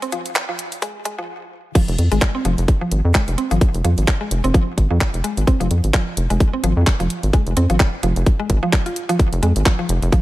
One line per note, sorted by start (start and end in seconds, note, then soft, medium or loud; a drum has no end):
0.02 0.05 C4 medium
0.02 closed hi-hat soft
0.12 0.17 F3 medium
0.12 closed hi-hat medium
0.26 closed hi-hat soft
0.36 kick loud
0.36 clap medium
0.36 closed hi-hat medium
0.49 0.51 F3 medium
0.59 closed hi-hat medium
0.72 closed hi-hat soft
0.82 0.90 G#3 medium
0.82 kick loud
0.82 closed hi-hat medium
1.05 1.10 G#3 medium
1.05 kick medium
1.05 closed hi-hat medium
1.18 1.24 F3 medium
1.75 1.78 F3 medium
1.75 kick loud
1.75 closed hi-hat medium
1.75 crash loud
1.88 1.96 F1 loud
1.88 closed hi-hat soft
1.98 2.09 F2 medium
1.98 closed hi-hat medium
2.12 2.20 G#1 medium
2.12 2.17 G#3 medium
2.12 closed hi-hat soft
2.22 kick loud
2.22 clap loud
2.22 closed hi-hat medium
2.35 2.37 C4 medium
2.45 2.55 F1 medium
2.45 2.50 F3 medium
2.45 closed hi-hat medium
2.58 2.66 F1 loud
2.58 closed hi-hat soft
2.68 kick loud
2.68 closed hi-hat medium
2.81 2.84 F3 medium
2.92 3.02 G#1 medium
2.92 closed hi-hat medium
3.05 3.13 F2 loud
3.15 3.22 G#3 medium
3.15 kick loud
3.15 clap medium
3.15 closed hi-hat medium
3.28 3.36 F1 loud
3.28 closed hi-hat soft
3.38 3.41 C4 medium
3.38 closed hi-hat medium
3.51 3.59 G#1 medium
3.51 3.55 F3 medium
3.51 closed hi-hat soft
3.61 kick loud
3.61 closed hi-hat medium
3.74 3.82 F1 loud
3.74 closed hi-hat soft
3.84 3.95 F2 medium
3.84 3.87 F3 medium
3.84 closed hi-hat medium
3.98 4.06 G#1 medium
3.98 closed hi-hat soft
4.08 kick loud
4.08 clap loud
4.08 closed hi-hat medium
4.21 4.27 G#3 medium
4.31 4.41 F1 medium
4.31 closed hi-hat loud
4.44 4.52 F1 loud
4.44 4.46 C4 medium
4.44 closed hi-hat soft
4.54 4.59 F3 medium
4.54 kick loud
4.54 closed hi-hat medium
4.78 4.88 G#1 loud
4.78 kick medium
4.78 closed hi-hat loud
4.90 4.99 F2 loud
4.90 4.93 F3 medium
5.01 kick loud
5.01 clap medium
5.01 closed hi-hat medium
5.14 5.22 F1 medium
5.14 closed hi-hat soft
5.24 5.32 G#3 medium
5.24 closed hi-hat medium
5.37 5.45 G#1 medium
5.37 closed hi-hat soft
5.47 5.50 C4 medium
5.47 kick loud
5.47 closed hi-hat medium
5.60 5.68 F1 loud
5.60 5.64 F3 medium
5.60 closed hi-hat soft
5.71 5.81 F2 medium
5.71 closed hi-hat medium
5.84 5.92 G#1 medium
5.84 closed hi-hat soft
5.94 5.97 F3 medium
5.94 kick loud
5.94 clap loud
5.94 closed hi-hat soft
6.17 6.27 F1 medium
6.17 closed hi-hat loud
6.30 6.38 F1 loud
6.30 6.36 G#3 medium
6.30 closed hi-hat soft
6.40 kick loud
6.40 closed hi-hat medium
6.53 6.56 C4 medium
6.63 6.74 G#1 medium
6.63 6.69 F3 medium
6.63 closed hi-hat loud
6.77 6.85 F2 loud
6.87 kick loud
6.87 clap medium
6.87 closed hi-hat medium
7.00 7.08 F1 medium
7.00 7.02 F3 medium
7.00 closed hi-hat soft
7.10 closed hi-hat loud
7.23 7.31 G#1 medium
7.23 closed hi-hat soft
7.33 7.41 G#3 medium
7.33 kick loud
7.33 closed hi-hat medium
7.47 7.54 F1 loud
7.47 closed hi-hat soft
7.57 7.67 F2 medium
7.57 7.60 C4 medium
7.57 closed hi-hat loud
7.70 7.78 G#1 medium
7.70 7.74 F3 medium
7.70 closed hi-hat soft
7.80 kick loud
7.80 clap medium
7.80 closed hi-hat soft
8.03 8.13 F1 medium
8.03 8.06 F3 medium
8.03 closed hi-hat loud
8.16 8.24 F1 loud
8.16 closed hi-hat soft
8.26 kick loud
8.26 closed hi-hat medium
8.39 8.45 G#3 medium
8.50 8.60 G#1 loud
8.50 kick medium
8.50 closed hi-hat loud
8.63 8.69 F3 loud
8.73 kick loud
8.73 clap medium
8.73 closed hi-hat medium
8.86 8.90 F4 medium
8.86 closed hi-hat soft
8.96 closed hi-hat medium
9.09 9.13 F3 loud
9.09 closed hi-hat soft
9.19 kick loud
9.19 closed hi-hat medium
9.33 9.40 F1 loud
9.33 closed hi-hat soft
9.43 9.53 F2 medium
9.43 9.50 G#3 medium
9.43 closed hi-hat medium
9.56 9.64 G#1 medium
9.56 closed hi-hat soft
9.66 9.71 F3 medium
9.66 kick loud
9.66 clap medium
9.66 closed hi-hat soft
9.79 9.83 F3 medium
9.89 9.99 F1 medium
9.89 closed hi-hat medium
10.02 10.10 F1 loud
10.02 closed hi-hat soft
10.12 10.15 F3 medium
10.12 kick loud
10.12 closed hi-hat medium